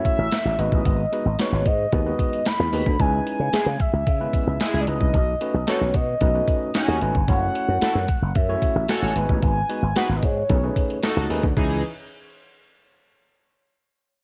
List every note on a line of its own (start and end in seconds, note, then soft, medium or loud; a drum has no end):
0.00 0.27 A3 medium
0.00 0.27 C#4 medium
0.00 0.27 E4 medium
0.00 0.27 F#4 medium
0.00 0.27 C#5 medium
0.05 0.61 E5 loud
0.05 kick medium
0.05 closed hi-hat medium
0.18 0.28 A1 loud
0.31 snare loud
0.31 closed hi-hat loud
0.45 0.55 A1 medium
0.58 0.68 G#1 loud
0.58 1.01 G#3 medium
0.58 1.01 B3 medium
0.58 1.02 D#4 medium
0.58 1.02 F#4 medium
0.58 1.02 B4 medium
0.58 1.41 D#5 loud
0.58 closed hi-hat medium
0.72 0.82 A1 medium
0.72 kick loud
0.85 1.05 G#1 loud
0.85 kick loud
0.85 closed hi-hat medium
1.12 1.26 G#3 medium
1.12 1.26 B3 medium
1.12 1.27 D#4 medium
1.12 1.27 F#4 medium
1.12 1.27 B4 medium
1.12 closed hi-hat medium
1.25 1.35 G#1 loud
1.39 1.67 G#3 medium
1.39 1.67 B3 medium
1.39 1.67 D#4 medium
1.39 1.67 F#4 medium
1.39 1.67 B4 medium
1.39 1.68 C#5 loud
1.39 snare loud
1.39 closed hi-hat loud
1.52 1.62 G#1 loud
1.66 1.85 G#2 loud
1.66 2.48 D#5 loud
1.66 kick medium
1.66 closed hi-hat medium
1.92 2.12 D#2 loud
1.92 2.00 G#3 medium
1.92 2.00 B3 medium
1.92 2.00 D#4 medium
1.92 2.00 F#4 medium
1.92 2.00 B4 medium
1.92 kick loud
1.92 closed hi-hat medium
2.06 2.41 G#3 medium
2.06 2.41 B3 medium
2.06 2.41 D#4 medium
2.06 2.41 F#4 medium
2.06 2.41 B4 medium
2.19 kick medium
2.19 closed hi-hat medium
2.33 closed hi-hat medium
2.45 3.02 B5 loud
2.45 snare loud
2.45 closed hi-hat loud
2.59 2.69 E2 medium
2.73 2.83 D#2 loud
2.73 2.87 G#3 medium
2.73 2.87 B3 medium
2.73 2.87 D#4 medium
2.73 2.87 F#4 medium
2.73 2.87 B4 medium
2.73 open hi-hat medium
2.86 2.96 D2 medium
2.86 kick loud
2.99 3.19 C#2 loud
2.99 3.56 G#3 medium
2.99 3.56 C#4 medium
2.99 3.56 D#4 medium
2.99 3.56 E4 medium
2.99 3.56 B4 medium
2.99 3.82 G#5 loud
2.99 kick loud
2.99 closed hi-hat medium
3.27 closed hi-hat medium
3.40 3.49 C#3 medium
3.53 3.65 G#3 medium
3.53 3.65 E4 medium
3.53 3.65 G#4 loud
3.53 muted slap bass stroke soft
3.53 snare loud
3.53 closed hi-hat loud
3.66 3.76 C#3 loud
3.80 4.80 E5 loud
3.80 kick loud
3.80 closed hi-hat medium
3.93 4.03 C#2 loud
4.07 4.26 C#3 loud
4.07 kick loud
4.07 closed hi-hat loud
4.20 4.55 G#3 medium
4.20 4.56 B3 medium
4.20 4.56 C#4 medium
4.20 4.56 E4 medium
4.20 4.56 B4 medium
4.33 kick loud
4.33 closed hi-hat medium
4.47 4.57 C#2 medium
4.60 4.83 G#3 loud
4.60 4.83 E4 loud
4.60 4.83 G#4 loud
4.60 snare loud
4.60 closed hi-hat loud
4.74 4.83 C#2 medium
4.80 4.89 D5 medium
4.87 4.97 C#2 loud
4.87 5.14 G#3 medium
4.87 5.14 C#4 medium
4.87 5.14 D#4 medium
4.87 5.14 E4 medium
4.87 5.14 B4 medium
4.87 5.70 D#5 loud
4.87 closed hi-hat medium
5.01 5.10 C2 loud
5.01 kick loud
5.14 5.33 B1 loud
5.14 kick loud
5.14 closed hi-hat medium
5.41 5.55 A3 medium
5.41 5.55 C#4 medium
5.41 5.55 D#4 medium
5.41 5.55 F#4 medium
5.41 5.55 B4 medium
5.41 closed hi-hat medium
5.54 5.64 B1 loud
5.67 5.96 A3 medium
5.67 5.96 C#4 medium
5.67 5.79 D#4 medium
5.67 5.96 D#4 medium
5.67 5.79 F#4 medium
5.67 5.96 F#4 medium
5.67 5.79 A4 loud
5.67 5.96 B4 medium
5.67 5.97 C#5 loud
5.67 snare loud
5.67 closed hi-hat loud
5.81 5.91 B1 loud
5.94 6.14 B2 loud
5.94 6.77 D#5 loud
5.94 kick loud
5.94 closed hi-hat medium
6.21 6.41 B1 loud
6.21 6.28 A3 medium
6.21 6.28 C#4 medium
6.21 6.28 D#4 medium
6.21 6.28 F#4 medium
6.21 6.29 B4 medium
6.21 kick loud
6.21 closed hi-hat loud
6.34 6.70 A3 medium
6.34 6.70 C#4 medium
6.34 6.70 D#4 medium
6.34 6.70 F#4 medium
6.34 6.70 B4 medium
6.48 kick loud
6.48 closed hi-hat medium
6.74 6.97 C#4 loud
6.74 6.97 D#4 loud
6.74 6.97 F#4 loud
6.74 7.28 G#5 loud
6.74 snare loud
6.74 closed hi-hat loud
6.88 6.98 D#2 loud
7.01 7.11 G#1 loud
7.01 7.15 A3 medium
7.01 7.16 C#4 medium
7.01 7.16 D#4 medium
7.01 7.16 F#4 medium
7.01 7.16 B4 loud
7.01 closed hi-hat medium
7.15 7.25 G1 loud
7.15 kick loud
7.28 7.48 F#1 loud
7.28 7.85 A3 medium
7.28 7.85 C#4 medium
7.28 7.85 E4 medium
7.28 7.85 F#4 medium
7.28 7.85 C#5 medium
7.28 8.37 F#5 loud
7.28 kick loud
7.28 closed hi-hat loud
7.55 closed hi-hat medium
7.68 7.78 F#2 loud
7.82 7.93 E4 medium
7.82 7.93 F#4 medium
7.82 7.93 A4 loud
7.82 muted slap bass stroke medium
7.82 snare loud
7.82 closed hi-hat loud
7.95 8.05 F#2 loud
8.08 kick medium
8.08 closed hi-hat medium
8.22 8.32 F#1 medium
8.35 8.55 F#2 loud
8.35 8.91 E5 medium
8.35 kick loud
8.35 closed hi-hat loud
8.49 8.84 A3 medium
8.49 8.84 C#4 medium
8.49 8.84 E4 medium
8.49 8.84 F#4 medium
8.49 8.84 C#5 medium
8.62 kick medium
8.62 closed hi-hat medium
8.75 8.85 A1 loud
8.88 9.12 F#4 loud
8.88 9.12 A4 loud
8.88 9.12 C#5 loud
8.88 9.43 G#5 loud
8.88 snare loud
8.88 closed hi-hat loud
9.02 9.12 A1 medium
9.15 9.25 G#1 loud
9.15 9.59 G#3 medium
9.15 9.59 B3 medium
9.15 9.59 D#4 medium
9.15 9.59 F#4 medium
9.15 9.59 B4 medium
9.15 closed hi-hat medium
9.29 9.39 A1 medium
9.29 kick loud
9.42 9.62 G#1 loud
9.42 9.98 G#5 loud
9.42 kick loud
9.42 closed hi-hat medium
9.69 9.83 G#3 medium
9.69 9.83 B3 medium
9.69 9.84 D#4 medium
9.69 9.84 F#4 medium
9.69 9.84 B4 medium
9.69 closed hi-hat medium
9.82 9.92 G#1 loud
9.96 10.24 G#3 medium
9.96 10.24 B3 medium
9.96 10.24 D#4 medium
9.96 10.07 F#4 medium
9.96 10.25 F#4 medium
9.96 10.07 G#4 medium
9.96 10.07 B4 loud
9.96 10.25 B4 medium
9.96 10.18 F#5 loud
9.96 snare loud
9.96 closed hi-hat loud
10.09 10.19 G#1 loud
10.16 10.25 D#5 medium
10.23 10.42 G#2 loud
10.23 11.04 C#5 medium
10.23 kick medium
10.23 closed hi-hat medium
10.49 10.69 B1 loud
10.49 10.56 A3 medium
10.49 10.57 C#4 medium
10.49 10.57 D#4 medium
10.49 10.57 G#4 medium
10.49 10.57 B4 medium
10.49 kick loud
10.49 closed hi-hat loud
10.63 10.98 A3 medium
10.63 10.98 C#4 medium
10.63 10.98 D#4 medium
10.63 10.98 G#4 medium
10.63 10.99 B4 medium
10.76 kick medium
10.76 closed hi-hat medium
10.90 closed hi-hat medium
11.03 11.26 D#4 loud
11.03 11.26 F#4 medium
11.03 11.26 A4 loud
11.03 snare loud
11.03 closed hi-hat loud
11.17 11.26 C#2 medium
11.30 11.40 D#2 loud
11.30 11.44 A3 loud
11.30 11.44 C#4 medium
11.30 11.44 D#4 loud
11.30 11.44 G#4 loud
11.30 11.44 B4 loud
11.30 open hi-hat medium
11.43 11.53 D2 loud
11.43 kick loud
11.57 11.82 C#2 loud
11.57 11.82 E3 medium
11.57 11.82 C#4 medium
11.57 11.82 D#4 medium
11.57 11.82 G#4 loud
11.57 11.82 B4 loud
11.57 kick loud
11.57 crash medium